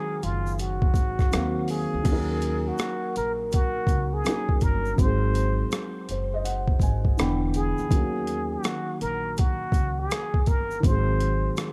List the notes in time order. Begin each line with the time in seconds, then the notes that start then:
Already playing: D#3 F#3 G#3 C4 G#4
0.23 F#1 F4, closed hi-hat, shaker
0.47 shaker
0.58 F#4, closed hi-hat, shaker
0.82 kick
0.94 G#1, kick, closed hi-hat, shaker
1.19 kick, cross-stick, shaker
1.31 D#2 D#3 F#3 A#3 C4, cross-stick, closed hi-hat, shaker
1.36 F5
1.68 G#4, open hi-hat, shaker
1.94 D2
2.03 D#2 F#3 A#3, kick, closed hi-hat, crash, shaker
2.08 C#4 D#4
2.12 A#4
2.41 closed hi-hat, shaker
2.68 F#4
2.78 cross-stick, closed hi-hat, shaker
3.16 A#1 A#4, closed hi-hat, shaker
3.52 F#4, kick, closed hi-hat, shaker
3.87 C#2, kick, closed hi-hat, shaker
4.14 G#4
4.24 F#3 A#3 C#4 D#4, cross-stick, closed hi-hat, shaker
4.29 A#4
4.49 kick
4.61 G1 A#4, kick, closed hi-hat, shaker
4.85 shaker
4.96 G#1 F#3 G#3 C5, kick, closed hi-hat, shaker
5.00 C4 D#4
5.05 G#4
5.35 closed hi-hat, shaker
5.71 cross-stick, closed hi-hat, shaker
6.09 F#1 C5, closed hi-hat, shaker
6.34 D#5
6.45 F#5, closed hi-hat, shaker
6.68 kick
6.80 G#1 G#5, kick, closed hi-hat, shaker
7.05 kick
7.17 E1 D3 E3 B3 D4 B5, cross-stick, closed hi-hat, shaker
7.22 G5
7.54 G#4, closed hi-hat, shaker
7.78 D2, shaker
7.88 D#2 D#3 F#3, kick, closed hi-hat, shaker
7.93 A#3 C#4
7.97 F#4
8.27 closed hi-hat, shaker
8.53 F#4
8.64 cross-stick, closed hi-hat, shaker
9.01 A#1 A#4, closed hi-hat, shaker
9.37 F#4, kick, closed hi-hat, shaker
9.72 C#2, kick, closed hi-hat, shaker
10.00 G#4
10.11 cross-stick, closed hi-hat, shaker
10.34 kick
10.46 G1 A#4, kick, closed hi-hat, shaker
10.71 shaker
10.80 G#1 D#3 F#3, kick, closed hi-hat, shaker
10.85 G#3 C4 C5
10.90 G#4
11.20 closed hi-hat, shaker
11.56 cross-stick, closed hi-hat, shaker